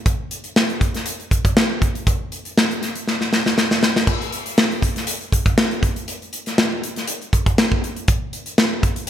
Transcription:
0.06 kick, closed hi-hat
0.31 closed hi-hat
0.44 closed hi-hat
0.56 snare
0.70 closed hi-hat
0.81 kick, closed hi-hat
0.94 snare, closed hi-hat
1.06 closed hi-hat
1.20 closed hi-hat
1.31 kick, closed hi-hat
1.45 kick, closed hi-hat
1.57 snare
1.82 kick, closed hi-hat
1.95 closed hi-hat
2.07 kick, closed hi-hat
2.32 closed hi-hat
2.45 closed hi-hat
2.58 snare
2.71 closed hi-hat
2.83 snare, closed hi-hat
2.95 closed hi-hat
3.08 snare
3.21 snare
3.33 snare
3.46 snare
3.58 snare
3.71 snare
3.83 snare
3.96 snare
4.07 kick, crash
4.22 closed hi-hat
4.32 closed hi-hat
4.46 closed hi-hat
4.58 snare
4.71 closed hi-hat
4.82 kick, closed hi-hat
4.96 snare, closed hi-hat
5.07 closed hi-hat
5.21 closed hi-hat
5.32 kick, closed hi-hat
5.46 kick, closed hi-hat
5.58 snare
5.71 closed hi-hat
5.83 kick, closed hi-hat
5.96 closed hi-hat
6.08 closed hi-hat
6.22 closed hi-hat
6.33 closed hi-hat
6.46 snare, closed hi-hat
6.58 snare
6.83 closed hi-hat
6.96 snare, closed hi-hat
7.07 closed hi-hat
7.21 closed hi-hat
7.33 kick, closed hi-hat
7.46 kick, closed hi-hat
7.58 snare
7.72 kick
7.84 closed hi-hat
7.96 closed hi-hat
8.08 kick, closed hi-hat
8.33 closed hi-hat
8.46 closed hi-hat
8.58 snare
8.83 kick, closed hi-hat
8.96 closed hi-hat

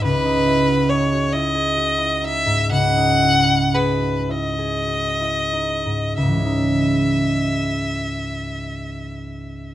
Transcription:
Already playing: D#4 E4 F#4 B4
0.04 C#2 B4
0.25 D#4
0.47 E4
0.69 F#4
0.89 G#4 C#5
1.12 F#4
1.33 E4 D#5
1.55 G#4
1.77 F#4
1.98 E4
2.22 D#4 E5
2.46 G#2
2.71 C#2 F#5
2.96 D#4
3.21 E4
3.48 F#4
3.75 G#4 B4
4.01 F#4
4.29 E4 D#5
4.59 G#4
4.88 F#4
5.21 E4
5.53 D#4
5.86 G#2
6.17 C#2 E5
6.22 G#2
6.28 E3
6.33 G#3
6.39 C#4
6.45 D#4

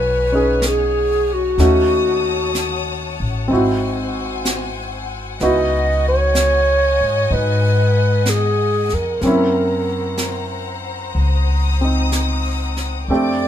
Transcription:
Already playing: B1 G#3 B3 C#4 F#4 B4 C#5 F#5 G#5
0.32 C#4 D#4 G#4
0.62 brush sweep, snare, hi-hat pedal
0.67 G#4
1.33 F#4
1.58 D#2 A3 C#4 D#4 F#4 C#5 A5 D#6, brush sweep, snare
2.55 brush sweep, snare, hi-hat pedal
3.20 A1
3.48 G#1 C4 D#4 E4 C5 G#5, brush sweep
3.53 F#4
4.45 brush sweep, snare, hi-hat pedal
5.39 C#2 B3 D#4 E4 F#4 D#5 G#5, brush sweep, snare
5.44 D#5
6.08 C#5
6.35 brush sweep, snare, hi-hat pedal
7.01 G#2
7.31 G#2 D#4 B4, brush sweep
8.26 G#4, brush sweep, snare, hi-hat pedal
8.89 F2, snare
8.94 A#4
9.21 F#2 A#3 C4 C5 A#5, brush sweep, snare
9.25 C#4 E4
10.18 brush sweep, snare, hi-hat pedal
11.14 C#2 D#6, brush sweep
11.81 C4 D#4
12.12 brush sweep, snare, hi-hat pedal
12.76 snare
13.08 F2 A3 C4 D4 G4 A4 D5 G5 D6, brush sweep
13.13 D5

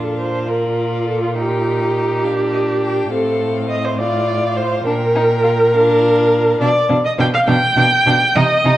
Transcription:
Already playing: A#2 D4 F5
0.04 A4
0.19 C5
0.47 F4 A#4 D5
1.07 A4
1.22 F4
1.35 D#4 G4 G5
2.24 D4 F5
2.53 D#5
2.82 G5
3.10 A2 C4 A4 F5
3.69 D#5
3.85 C5
3.99 F4 D5 F5
4.57 C5
4.86 A#2 D4 A#4 G5
5.15 D#4
5.44 F4
5.73 D4 F5
6.60 B2 D4 D5 F5
6.89 B2 D4 F5
7.05 D#5
7.18 B2 D4 F5 G5
7.34 F5
7.48 B2 D4 F5 G5
7.76 B2 D4 F5
8.06 B2 D4 F5
8.35 C3 D#4 D#5 G5
8.64 C3 D#4 G5

